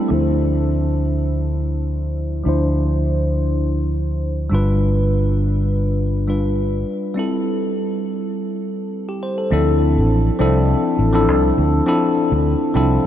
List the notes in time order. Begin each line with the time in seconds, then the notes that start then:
Already playing: G3 A3 C4 D4 E4 A4
0.08 D2 F3 D4 E4
0.13 C5
2.44 D2 F3 D4 E4
2.49 C5
4.50 G1 G3 D4 F4
4.55 B4
6.27 G3 D4 F4 B4
7.14 G3 C4 E4
7.19 A4
9.09 G4
9.23 C5
9.38 A4
9.51 D2 F3 C4 D4 E4 A4
9.97 A1
10.39 C2 F3 C4 D4 E4 A4
10.99 A1
11.13 F3 C4 D4 E4 A4
11.28 C2
11.58 D2
11.86 F3 C4 D4 E4 A4
12.32 D2
12.74 C2 F3 C4 D4 E4 A4